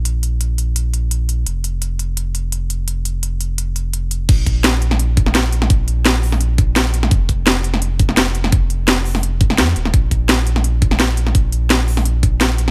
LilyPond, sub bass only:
\new Staff \with { instrumentName = "Sub bass" } { \clef bass \time 4/4 \key bes \mixolydian \tempo 4 = 170 bes,,1 | f,,1~ | f,,1 | bes,,1 |
bes,,1 | f,,1 | f,,2. f,8 ees,,8 | bes,,1 |
bes,,1 | }